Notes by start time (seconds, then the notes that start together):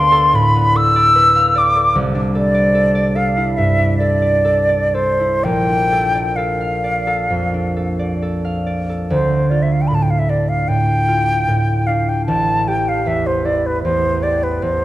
Already playing: D2 B3 D4 A4 B4 D5 F5 C6
0.12 A4
0.33 A2 B5
0.55 B3
0.75 A4 E6
0.96 D5
1.15 B4
1.36 F5
1.55 D5 D6
1.76 A4
1.95 C2
2.15 D4
2.35 A4 D5
2.54 D5
2.75 A4
2.95 D5
3.16 A4 F5
3.37 E4
3.57 G2 E5
3.78 D4
3.97 A4 D5
4.22 D5
4.45 A4
4.69 D5
4.94 A4 C5
5.20 E4
5.44 A#1 G5
5.69 D4
5.92 A4
6.14 D5
6.36 A4 F5
6.61 F5
6.84 D5
7.07 A4
7.30 F2
7.54 D4
7.76 A4
7.99 D5
8.22 A4
8.45 F5
8.66 D5
8.89 A4
9.10 D2 C5
9.50 F4 D5
9.62 E5
9.72 F5
9.81 G5
9.88 A2 B5
9.95 A5
10.02 G5
10.10 F5
10.19 E5
10.29 D4 D5
10.49 F5
10.68 A2 G5
11.08 F4
11.48 A2
11.87 D4 F5
12.09 G5
12.26 A1 A5
12.68 G4 G5
12.89 F5
13.06 E2 E5
13.27 C5
13.45 E4 D5
13.66 B4
13.83 E2 C5
14.23 G4 D5
14.43 B4
14.62 E2 C5